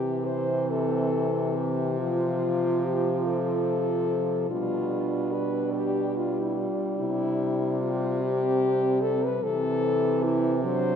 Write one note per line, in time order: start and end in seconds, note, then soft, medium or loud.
0.00 4.46 C3 medium
0.00 2.00 E3 medium
0.00 1.92 C4 medium
0.00 0.27 G4 loud
0.25 0.71 C5 loud
0.70 1.58 A4 loud
1.56 2.01 G4 medium
1.98 4.50 F3 medium
1.98 4.52 F4 medium
1.98 2.87 F4 loud
2.85 3.25 G4 medium
3.26 4.48 A4 loud
4.50 6.67 B2 medium
4.50 9.25 G3 medium
4.50 7.93 D4 medium
4.50 5.34 F4 loud
5.33 5.73 B4 loud
5.74 6.18 G4 loud
6.17 6.42 F4 loud
6.40 6.60 E4 medium
6.59 6.98 F4 medium
6.99 9.38 C3 medium
6.99 7.83 E4 loud
7.81 8.23 F4 medium
8.19 9.38 C4 medium
8.19 9.03 G4 loud
9.01 9.26 A4 loud
9.25 9.45 B4 loud
9.40 10.96 C3 medium
9.40 10.66 E3 medium
9.40 10.65 C4 medium
9.40 10.25 A4 loud
10.24 10.53 E4 loud
10.64 10.96 F#3 medium
10.64 10.96 D4 medium
10.64 10.96 C5 loud